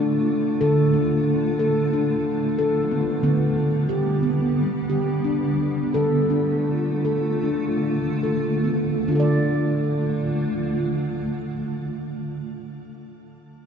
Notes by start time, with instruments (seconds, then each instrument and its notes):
Already playing: handpan D3 D4, ambient pad D3 A3 F4
0.61 handpan D3 A4
0.94 handpan D4
1.59 handpan A4
1.93 handpan D4
2.59 handpan A4
2.91 handpan B3
3.23 handpan D3 B3, ambient pad G3 B3
3.89 handpan G4
4.23 handpan B3
4.90 handpan G4
5.24 handpan D4
5.94 handpan D3 A4, ambient pad A3 F4
6.30 handpan D4
7.05 handpan A4
7.43 handpan D4
8.23 handpan A4
8.64 handpan B3
9.08 handpan D3 D4 F4, ambient pad D3 A3 F4
9.15 handpan A4
9.20 handpan D5